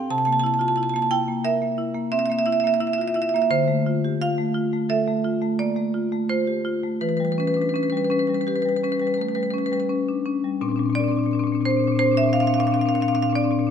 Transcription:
0.10 C3 A5
0.18 A5
0.25 A#3 A5
0.32 A5
0.40 A5
0.44 E4 A5
0.54 A5
0.59 F4 A5
0.68 A5
0.76 E4 A5
0.83 A5
0.89 A5
0.94 A#3 A5
1.02 A5
1.11 E4 G5
1.28 A#3
1.44 A#4 E5
1.62 A#3
1.78 E4
1.94 A#3
2.12 C4 E5
2.19 E5
2.26 A#3 E5
2.32 E5
2.39 E5
2.46 E4 E5
2.52 E5
2.60 A#3 E5
2.67 E5
2.74 E5
2.80 E4 E5
2.87 E5
2.93 E5
2.98 F4 E5
3.08 E5
3.14 E4 E5
3.22 E5
3.29 E5
3.34 A#3 E5
3.42 E5
3.50 D3 C5
3.68 A3
3.86 F4
4.05 G4
4.22 F4 F5
4.38 A3
4.54 F4
4.73 A3
4.89 A4 E5
5.07 A3
5.24 F4
5.42 A3
5.59 A#3 D5
5.76 A3
5.94 F4
6.12 A3
6.29 F4 C5
6.47 G4
6.65 F4
6.84 A3
7.01 E3 B4
7.09 B4
7.17 G3 B4
7.25 B4
7.32 B4
7.38 C#4 B4
7.47 B4
7.54 D4 B4
7.61 B4
7.69 B4
7.74 C#4 B4
7.83 B4
7.90 G3 B4
7.97 B4
8.05 B4
8.10 C#4 B4
8.19 B4
8.27 G3 B4
8.34 B4
8.41 B4
8.47 G4 B4
8.56 B4
8.62 G3 B4
8.69 B4
8.76 B4
8.84 C#4 B4
8.92 B4
9.00 G3 B4
9.07 B4
9.14 A3 B4
9.21 B4
9.29 B4
9.35 G3 B4
9.43 B4
9.50 C#4 B4
9.58 B4
9.66 B4
9.72 G3 B4
9.80 B4
9.89 C#4
10.09 D4
10.26 C#4
10.44 G3
10.61 A#2 C4 D4
10.69 A#2 C4 D4
10.76 A#2 C4 D4
10.83 C4 D4
10.89 A#2 C4 D4
10.95 D4 D5
11.00 A#2 C4
11.04 D4
11.08 A#2 C4 D4
11.16 A#2 C4 D4
11.24 A#2 C4 D4
11.31 A#2 C4 D4
11.39 C4 D4
11.44 A#2 C4 D4
11.52 A#2 C4 D4
11.61 A#2 C4 D4
11.65 C4 C5
11.70 A#2 D4
11.77 A#2 C4 D4
11.84 A#2 C4 D4
11.92 C4 D4
11.97 A#2 C4 C5
12.03 A#2 C4 D4
12.12 A#2 C4 D4
12.17 C4 D4 E5
12.23 A#2 D4
12.28 C4
12.33 A#2 C4 D4 F5
12.40 A#2 C4 D4 F5
12.47 A#2 C4 D4 F5
12.54 D4 F5
12.58 A#2 C4 F5
12.64 C4 D4 F5
12.68 A#2
12.72 C4 D4 F5
12.76 A#2 C4 D4
12.81 F5
12.86 A#2 C4 D4 F5
12.93 A#2 C4 D4 F5
13.00 A#2 C4 D4 F5
13.08 C4 D4 F5
13.13 A#2 C4 D4 F5
13.22 A#2 C4 D4 F5
13.29 A#2 C4 D4
13.35 C4 D4 D5
13.41 A#2 D4
13.45 C4
13.51 A#2 C4 D4
13.59 A#2 C4 D4
13.67 C4 D4

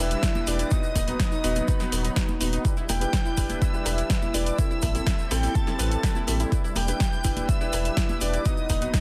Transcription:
Already playing: G3 D4 E4 G4 B4 E5 E6, downlifter
0.00 E1
0.11 closed hi-hat, shaker
0.23 D4 E4 G4 B4, kick, snare, closed hi-hat, shaker
0.35 E4, high conga, shaker
0.47 E1 D4 E4 G4 B4 D5 D6, open hi-hat, shaker
0.59 E4, closed hi-hat, shaker
0.71 F#3 B3 D#4 F#4 B4 D#5 D#6, kick, closed hi-hat, shaker
0.83 shaker
0.96 D#1 D#4, kick, open hi-hat, cowbell, high conga, high woodblock, shaker
1.08 B3 D#4 F#4 B4, closed hi-hat, shaker
1.20 D#5 D#6, kick, snare, closed hi-hat, shaker
1.32 D#4, shaker
1.44 D#1 B3 D#4 F#4 B4, open hi-hat, shaker
1.56 closed hi-hat, high conga, shaker
1.68 D#4 B4 B5, kick, closed hi-hat, shaker
1.80 B3 D#4 F#4 B4, snare, shaker
1.92 D#1, open hi-hat, cowbell, shaker
2.04 D#4, closed hi-hat, shaker
2.16 B3 D#4 F#4 B4, kick, snare, closed hi-hat, shaker
2.28 high conga, shaker
2.41 D#1 B3 D#4 F#4 B4, open hi-hat, shaker
2.52 D#4, closed hi-hat, shaker
2.65 G3 D4 E4 G4 B4, kick, closed hi-hat, shaker
2.77 E4, shaker
2.89 E1 E4 G5 G6, open hi-hat, cowbell, high conga, high woodblock, shaker
3.01 D4 E4 G4 B4, closed hi-hat, shaker
3.13 E4, kick, snare, closed hi-hat, shaker
3.26 E4, shaker
3.37 E1 D4 E4 G4 B4, kick, open hi-hat, shaker
3.50 E4, closed hi-hat, high conga, shaker
3.62 E4 E5 E6, kick, closed hi-hat, shaker
3.74 D4 E4 G4 B4, shaker
3.85 E1 E4, open hi-hat, cowbell, high woodblock, shaker
3.98 E4, closed hi-hat, shaker
4.10 D4 E4 G4 B4, kick, snare, closed hi-hat, shaker
4.22 E4, high conga, shaker
4.34 E1 D4 E4 G4 B4 D5 D6, open hi-hat, shaker
4.46 closed hi-hat, shaker
4.58 G3 C4 E4 G4 A4 E5 E6, kick, closed hi-hat, shaker
4.71 E4, shaker
4.82 A1, kick, open hi-hat, cowbell, high conga, high woodblock, shaker
4.95 C4 E4 G4 A4, closed hi-hat, shaker
5.07 E4, kick, snare, closed hi-hat, shaker
5.19 shaker
5.31 A1 C4 E4 G4 A4 G5 G6, open hi-hat, shaker
5.43 E4, open hi-hat, high conga, shaker
5.55 A5 A6, kick, closed hi-hat, shaker
5.67 C4 E4 G4 A4, snare, shaker
5.79 A1 B4, open hi-hat, cowbell, shaker
5.92 closed hi-hat, shaker
6.03 C4 E4 G4 A4 B4, kick, snare, closed hi-hat, shaker
6.15 E4, high conga, shaker
6.27 A1 C4 E4 G4 A4 E5, open hi-hat, cowbell, shaker
6.40 E4, closed hi-hat, shaker
6.52 D4 E4 G4 B4, kick, closed hi-hat, shaker
6.64 E4, shaker
6.76 E1 G5 G6, open hi-hat, cowbell, high conga, high woodblock, shaker
6.88 D4 E4 G4 B4, closed hi-hat, shaker
7.00 E4, kick, snare, closed hi-hat, shaker
7.13 shaker
7.24 E1 D4 E4 G4 B4, kick, open hi-hat, shaker
7.36 E4, closed hi-hat, high conga, shaker
7.49 E5 E6, kick, closed hi-hat, shaker
7.61 D4 E4 G4 B4, shaker
7.73 E1 E4, open hi-hat, cowbell, high woodblock, shaker
7.85 closed hi-hat, shaker
7.97 D4 E4 G4, kick, snare, closed hi-hat, shaker
8.09 E4, high conga, shaker
8.21 E1 D4 E4 G4 B4 D5 D6, open hi-hat, shaker
8.34 E4, closed hi-hat, shaker
8.45 F#3 B3 D#4 F#4 B4 D#5 D#6, kick, closed hi-hat, shaker
8.57 shaker
8.69 D#1 D#4, kick, open hi-hat, cowbell, high conga, high woodblock, shaker
8.81 B3 D#4 F#4 B4, closed hi-hat, shaker
8.94 D#5 D#6, kick, snare, closed hi-hat, shaker

